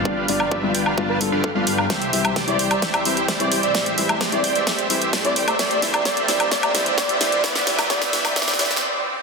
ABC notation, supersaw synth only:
X:1
M:4/4
L:1/16
Q:1/4=130
K:Gmix
V:1 name="Supersaw synth"
[DFGBf]2 [DFGBf]2 [DFGBe]2 [DFGBg] [DFGBf] [DFGBa]2 z [DFGBf]2 [DFGBf] [DFGBf]2 | [Gce]2 [Gce]2 [Gcd]2 [Gcg] [Gce] [Gce]2 [Gce]2 [Gcd]2 [Gcg] [Gce] | [Gce]2 [Gce]2 [Gcd]2 [Gcg] [Gce] [Gce]2 [Gce]2 [Gcd]2 [Gcg] [Gce] | [Gce]2 [Gce]2 [Gce]2 [Gce]2 [Gce]2 [Gce]2 [Gc]2 [Gce]2 |
B2 [GBe]2 [Ge]2 [GBe]2 [GBe]2 [GBe]2 z4 |]